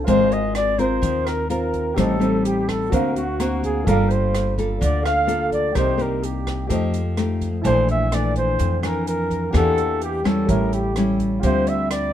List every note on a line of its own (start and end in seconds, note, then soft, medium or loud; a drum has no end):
0.04 0.99 G#1 medium
0.04 1.00 G#3 medium
0.04 0.75 C4 medium
0.04 1.92 F4 soft
0.04 0.75 F4 soft
0.04 1.92 A#4 soft
0.04 0.75 A#4 medium
0.04 0.32 C5 medium
0.04 kick medium
0.04 closed hi-hat soft
0.08 1.94 C5 soft
0.08 0.35 C5 loud
0.08 1.95 D#5 soft
0.31 0.53 D#5 medium
0.31 0.56 D#5 medium
0.31 closed hi-hat soft
0.54 0.80 D5 medium
0.54 0.81 D5 loud
0.54 cross-stick medium
0.54 closed hi-hat soft
0.78 1.46 C4 medium
0.78 1.46 F4 medium
0.78 1.46 A#4 medium
0.78 1.26 C5 medium
0.78 1.28 C5 loud
0.78 kick soft
0.78 closed hi-hat soft
1.02 1.93 D#2 medium
1.02 1.94 D#3 medium
1.02 kick medium
1.02 closed hi-hat soft
1.25 1.48 A#4 medium
1.25 1.50 A#4 medium
1.25 cross-stick medium
1.25 closed hi-hat soft
1.49 1.95 C4 medium
1.49 1.95 F4 medium
1.49 1.97 A#4 medium
1.49 1.96 A#4 medium
1.49 1.99 A#4 medium
1.49 closed hi-hat soft
1.74 kick soft
1.74 closed hi-hat soft
1.94 2.88 A1 loud
1.94 2.89 A2 soft
1.94 2.17 G3 medium
1.94 2.17 C4 soft
1.94 2.17 D#4 medium
1.94 2.88 G4 medium
1.94 2.42 A4 medium
1.94 2.90 A4 soft
1.94 2.45 A4 loud
1.94 kick soft
1.94 cross-stick medium
1.94 closed hi-hat soft
1.99 2.91 C5 soft
1.99 2.92 D#5 medium
2.20 2.87 G3 medium
2.20 2.88 C4 medium
2.20 2.88 D#4 medium
2.20 closed hi-hat soft
2.43 2.70 G4 medium
2.43 2.71 G4 medium
2.43 closed hi-hat soft
2.68 2.91 A4 medium
2.68 2.95 A4 medium
2.68 kick soft
2.68 cross-stick medium
2.68 closed hi-hat soft
2.90 3.83 D2 medium
2.90 3.84 D3 medium
2.90 3.23 A#3 medium
2.90 3.23 C4 medium
2.90 3.83 F#4 soft
2.90 3.23 F#4 medium
2.90 3.14 A#4 medium
2.90 3.85 A#4 soft
2.90 3.16 A#4 medium
2.90 3.85 C5 soft
2.90 kick medium
2.90 closed hi-hat soft
2.95 3.86 F5 medium
3.14 3.59 F#4 medium
3.14 3.60 F#4 medium
3.14 closed hi-hat soft
3.39 3.83 A#3 medium
3.39 3.83 C4 medium
3.39 3.83 F#4 medium
3.39 cross-stick medium
3.39 closed hi-hat soft
3.63 3.85 G#4 medium
3.63 3.86 G#4 medium
3.63 kick soft
3.63 closed hi-hat soft
3.85 4.77 G1 medium
3.85 4.79 G3 medium
3.85 4.54 A#3 medium
3.85 4.54 F4 medium
3.85 5.01 A4 medium
3.85 4.54 A4 medium
3.85 4.10 A#4 medium
3.85 4.13 A#4 loud
3.85 5.03 D5 soft
3.85 kick medium
3.85 closed hi-hat soft
3.91 5.04 F5 medium
4.09 4.53 C5 medium
4.09 4.55 C5 medium
4.09 closed hi-hat soft
4.35 cross-stick medium
4.35 closed hi-hat soft
4.58 5.25 A#3 medium
4.58 5.25 F4 medium
4.58 5.25 A4 medium
4.58 kick soft
4.58 closed hi-hat soft
4.79 5.72 D2 medium
4.79 5.73 D3 medium
4.79 5.02 D5 medium
4.79 5.04 D5 medium
4.79 kick medium
4.79 closed hi-hat soft
5.03 5.75 A4 soft
5.03 5.75 D5 soft
5.03 5.47 F5 medium
5.03 5.49 F5 loud
5.03 5.76 F5 soft
5.03 cross-stick medium
5.03 closed hi-hat soft
5.27 5.73 A#3 medium
5.27 5.73 F4 medium
5.27 5.73 A4 medium
5.27 closed hi-hat soft
5.51 5.76 D5 medium
5.51 5.78 D5 medium
5.51 kick soft
5.51 closed hi-hat soft
5.72 6.66 C2 medium
5.72 6.68 C3 medium
5.72 5.95 A#3 medium
5.72 5.95 D#4 medium
5.72 6.66 G4 medium
5.72 5.96 G4 medium
5.72 6.68 A#4 soft
5.72 6.01 C5 medium
5.72 6.03 C5 loud
5.72 kick medium
5.72 cross-stick medium
5.72 closed hi-hat soft
5.77 6.69 D5 soft
5.77 6.70 D#5 medium
5.97 6.65 A#3 medium
5.97 6.66 D#4 medium
5.97 6.66 G4 medium
5.97 6.24 A#4 medium
5.97 closed hi-hat soft
6.02 6.27 A#4 medium
6.23 6.70 G4 medium
6.23 6.71 G4 medium
6.23 closed hi-hat soft
6.47 kick soft
6.47 cross-stick medium
6.47 closed hi-hat soft
6.67 7.61 F2 medium
6.67 7.62 F3 medium
6.67 7.00 A3 medium
6.67 7.01 D#4 medium
6.67 7.61 G4 soft
6.67 7.01 G4 medium
6.67 7.62 A4 soft
6.67 7.63 C5 soft
6.67 kick medium
6.67 closed hi-hat soft
6.73 7.64 D#5 medium
6.94 closed hi-hat soft
7.17 7.48 A3 medium
7.17 7.48 D#4 medium
7.17 7.48 G4 medium
7.17 cross-stick medium
7.17 closed hi-hat soft
7.41 kick soft
7.41 closed hi-hat soft
7.61 8.55 A#1 medium
7.61 8.57 A#2 medium
7.61 8.08 E3 medium
7.61 8.08 A3 medium
7.61 8.08 D4 medium
7.61 9.48 E4 soft
7.61 9.50 C5 soft
7.61 9.49 A5 soft
7.61 kick medium
7.61 closed hi-hat soft
7.66 7.88 C5 medium
7.66 7.88 C5 loud
7.66 9.51 D5 soft
7.89 8.15 E5 medium
7.89 8.16 E5 medium
7.89 closed hi-hat soft
8.12 8.79 E3 medium
8.12 8.79 A3 soft
8.12 8.79 D4 medium
8.12 8.36 D5 medium
8.12 8.37 D5 medium
8.12 cross-stick medium
8.12 closed hi-hat soft
8.36 8.80 C5 medium
8.36 8.81 C5 medium
8.36 kick soft
8.36 closed hi-hat soft
8.59 9.51 F2 medium
8.59 9.50 F2 medium
8.59 kick medium
8.59 closed hi-hat soft
8.83 9.50 E3 medium
8.83 9.50 D4 medium
8.83 9.05 A#4 medium
8.83 9.06 A#4 medium
8.83 cross-stick medium
8.83 closed hi-hat soft
9.07 9.51 A#4 medium
9.07 closed hi-hat soft
9.31 kick soft
9.31 closed hi-hat soft
9.51 10.44 E2 medium
9.51 10.24 E3 medium
9.51 10.46 A#3 soft
9.51 10.20 A#3 medium
9.51 10.20 D4 medium
9.51 10.43 G4 soft
9.51 10.21 G4 medium
9.51 9.98 A4 medium
9.51 10.47 D5 soft
9.51 kick medium
9.51 cross-stick medium
9.51 closed hi-hat soft
9.56 9.99 A4 loud
9.56 10.48 F#5 medium
9.78 closed hi-hat soft
10.01 10.27 G4 medium
10.01 10.28 G4 medium
10.01 closed hi-hat soft
10.24 10.92 G3 medium
10.24 10.92 C#4 medium
10.24 10.92 E4 medium
10.24 10.50 A4 medium
10.24 10.51 A4 medium
10.24 kick soft
10.24 cross-stick medium
10.24 closed hi-hat soft
10.44 11.39 G4 medium
10.44 11.40 A4 soft
10.49 11.39 A1 medium
10.49 11.41 A2 soft
10.49 10.74 A#4 medium
10.49 10.75 A#4 medium
10.49 11.41 C#5 soft
10.49 11.42 E5 medium
10.49 kick medium
10.49 closed hi-hat soft
10.73 11.20 G4 medium
10.73 closed hi-hat soft
10.96 11.42 G3 medium
10.96 11.42 C#4 medium
10.96 11.42 E4 medium
10.96 cross-stick medium
10.96 closed hi-hat soft
11.20 kick soft
11.20 closed hi-hat soft
11.39 12.13 D2 loud
11.39 12.13 F4 soft
11.39 12.13 G4 soft
11.39 11.69 C5 medium
11.39 12.13 C5 soft
11.39 kick medium
11.39 closed hi-hat soft
11.44 12.13 D3 medium
11.44 12.10 G3 soft
11.44 12.11 C4 medium
11.44 12.11 F4 medium
11.44 11.70 C5 loud
11.44 12.13 E5 medium
11.67 11.91 E5 medium
11.67 closed hi-hat soft
11.91 12.13 D5 medium
11.91 cross-stick medium
11.91 closed hi-hat soft